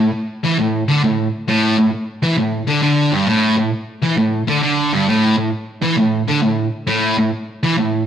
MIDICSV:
0, 0, Header, 1, 2, 480
1, 0, Start_track
1, 0, Tempo, 449775
1, 1574, Time_signature, 4, 2, 24, 8
1, 8609, End_track
2, 0, Start_track
2, 0, Title_t, "Distorted electric guitar"
2, 0, Program_c, 0, 30
2, 0, Note_on_c, 0, 45, 72
2, 107, Note_off_c, 0, 45, 0
2, 466, Note_on_c, 0, 52, 105
2, 614, Note_off_c, 0, 52, 0
2, 628, Note_on_c, 0, 45, 68
2, 879, Note_off_c, 0, 45, 0
2, 943, Note_on_c, 0, 50, 94
2, 1093, Note_off_c, 0, 50, 0
2, 1107, Note_on_c, 0, 45, 71
2, 1359, Note_off_c, 0, 45, 0
2, 1581, Note_on_c, 0, 45, 107
2, 1886, Note_off_c, 0, 45, 0
2, 1899, Note_on_c, 0, 45, 80
2, 2023, Note_off_c, 0, 45, 0
2, 2376, Note_on_c, 0, 52, 105
2, 2528, Note_off_c, 0, 52, 0
2, 2536, Note_on_c, 0, 45, 74
2, 2792, Note_off_c, 0, 45, 0
2, 2852, Note_on_c, 0, 50, 105
2, 2997, Note_off_c, 0, 50, 0
2, 3010, Note_on_c, 0, 50, 102
2, 3324, Note_off_c, 0, 50, 0
2, 3330, Note_on_c, 0, 43, 98
2, 3485, Note_off_c, 0, 43, 0
2, 3486, Note_on_c, 0, 45, 102
2, 3798, Note_off_c, 0, 45, 0
2, 3811, Note_on_c, 0, 45, 72
2, 3938, Note_off_c, 0, 45, 0
2, 4294, Note_on_c, 0, 52, 104
2, 4443, Note_off_c, 0, 52, 0
2, 4447, Note_on_c, 0, 45, 69
2, 4707, Note_off_c, 0, 45, 0
2, 4781, Note_on_c, 0, 50, 99
2, 4922, Note_off_c, 0, 50, 0
2, 4934, Note_on_c, 0, 50, 92
2, 5246, Note_off_c, 0, 50, 0
2, 5258, Note_on_c, 0, 43, 101
2, 5409, Note_off_c, 0, 43, 0
2, 5411, Note_on_c, 0, 45, 92
2, 5721, Note_off_c, 0, 45, 0
2, 5734, Note_on_c, 0, 45, 68
2, 5860, Note_off_c, 0, 45, 0
2, 6214, Note_on_c, 0, 52, 99
2, 6367, Note_off_c, 0, 52, 0
2, 6377, Note_on_c, 0, 45, 66
2, 6633, Note_off_c, 0, 45, 0
2, 6704, Note_on_c, 0, 50, 94
2, 6851, Note_off_c, 0, 50, 0
2, 6855, Note_on_c, 0, 45, 69
2, 7112, Note_off_c, 0, 45, 0
2, 7333, Note_on_c, 0, 45, 92
2, 7647, Note_off_c, 0, 45, 0
2, 7661, Note_on_c, 0, 45, 74
2, 7784, Note_off_c, 0, 45, 0
2, 8147, Note_on_c, 0, 52, 101
2, 8294, Note_off_c, 0, 52, 0
2, 8299, Note_on_c, 0, 45, 69
2, 8555, Note_off_c, 0, 45, 0
2, 8609, End_track
0, 0, End_of_file